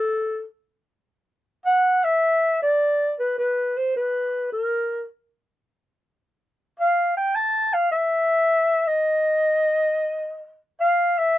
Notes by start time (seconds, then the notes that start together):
Already playing: A4
1.66 F#5
2.04 E5
2.62 D5
3.19 B4
3.39 B4
3.77 C5
3.96 B4
4.52 A#4
6.79 F5
7.17 G5
7.35 A5
7.74 F5
7.92 E5
8.87 D#5
10.80 F5
11.18 E5